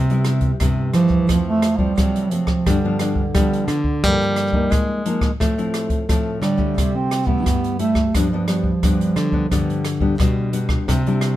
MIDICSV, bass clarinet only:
0, 0, Header, 1, 2, 480
1, 0, Start_track
1, 0, Tempo, 684932
1, 1871, Time_signature, 4, 2, 24, 8
1, 7964, End_track
2, 0, Start_track
2, 0, Title_t, "Bass clarinet"
2, 0, Program_c, 0, 71
2, 658, Note_on_c, 0, 53, 92
2, 999, Note_off_c, 0, 53, 0
2, 1036, Note_on_c, 0, 57, 91
2, 1240, Note_on_c, 0, 55, 89
2, 1251, Note_off_c, 0, 57, 0
2, 1615, Note_on_c, 0, 53, 82
2, 1625, Note_off_c, 0, 55, 0
2, 1875, Note_on_c, 0, 50, 81
2, 1885, Note_off_c, 0, 53, 0
2, 3314, Note_off_c, 0, 50, 0
2, 4501, Note_on_c, 0, 55, 83
2, 4873, Note_on_c, 0, 60, 92
2, 4883, Note_off_c, 0, 55, 0
2, 5090, Note_on_c, 0, 59, 91
2, 5101, Note_off_c, 0, 60, 0
2, 5458, Note_off_c, 0, 59, 0
2, 5462, Note_on_c, 0, 57, 88
2, 5689, Note_off_c, 0, 57, 0
2, 5718, Note_on_c, 0, 53, 72
2, 7125, Note_off_c, 0, 53, 0
2, 7964, End_track
0, 0, End_of_file